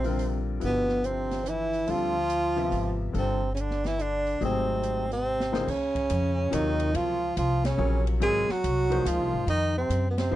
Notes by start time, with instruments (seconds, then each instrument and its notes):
Already playing: upright bass A#1, trombone C3, tenor saxophone C4
0.03 upright piano D3 G3 C4 F4 A#4, open hi-hat
0.19 open hi-hat
0.60 upright bass G1, trombone B2, upright piano D3 F3 E4 G4 B4, open hi-hat
0.64 tenor saxophone B3
0.88 snare
1.03 trombone C3, tenor saxophone C4, closed hi-hat
1.31 snare, open hi-hat
1.45 trombone E3, closed hi-hat
1.49 tenor saxophone E4
1.73 open hi-hat
1.87 upright bass D2, upright piano D3 G3 C4 F4 A4, trombone F3, open hi-hat
1.91 tenor saxophone F4
2.30 closed hi-hat
2.56 upright piano C3 F3 B3 G4 E5, open hi-hat
2.71 upright bass G#1, open hi-hat
3.13 upright bass G1, trombone C3, upright piano D3 G3 C4 F4 A4, open hi-hat
3.18 tenor saxophone C4
3.52 trombone C#3, tenor saxophone C#4
3.57 trombone D3, tenor saxophone D4, closed hi-hat
3.71 snare
3.84 trombone E3, tenor saxophone E4, snare, open hi-hat
3.99 trombone D3, tenor saxophone D4, closed hi-hat
4.27 open hi-hat
4.41 upright bass G#1, trombone C3, upright piano F#3 A3 C4 D#4 G#4, open hi-hat
4.45 tenor saxophone C4
4.83 closed hi-hat
5.09 trombone C3, tenor saxophone C4, open hi-hat
5.40 snare
5.52 upright piano C#2 F3 A#3 D#4 G#4 C5, snare
5.66 upright bass C#2, trombone C#3, tenor saxophone C#4, kick, crash
5.95 kick, ride
6.10 upright bass F2, hi-hat pedal, ride
6.50 upright bass D#2, upright piano C3 F#3 F4 A#4 C#5, trombone D#3, tenor saxophone D#4, hi-hat pedal, ride
6.80 ride
6.93 upright bass C#2, trombone F3, tenor saxophone F4, ride
7.36 upright bass C2, trombone F3, tenor saxophone F4, hi-hat pedal, ride
7.65 trombone C#3, tenor saxophone C#4, snare, ride
7.77 upright bass A#1, upright piano C3 F#3 F4 A#4 C#5
8.07 ride
8.20 upright bass G#1, upright piano F#3 C4 F4 A#4 C#5, trombone G#3, tenor saxophone G#4, ride
8.49 trombone F#3, tenor saxophone F#4, muted upright bass stroke, snare
8.64 upright bass C2, hi-hat pedal, ride
8.90 upright piano F3 A#3 D#4 G#4 C5, ride
9.05 upright bass C#2, trombone F3, tenor saxophone F4, hi-hat pedal, ride
9.19 upright bass C2
9.33 upright bass G#1
9.47 upright bass F2, trombone D#3, tenor saxophone D#4, ride
9.77 trombone C3, tenor saxophone C4
9.89 upright bass F#2, hi-hat pedal, ride
10.10 trombone B2, tenor saxophone B3
10.18 trombone C3, tenor saxophone C4, snare, ride
10.31 upright bass G#2, upright piano F3 A#3 D#4 G#4 C5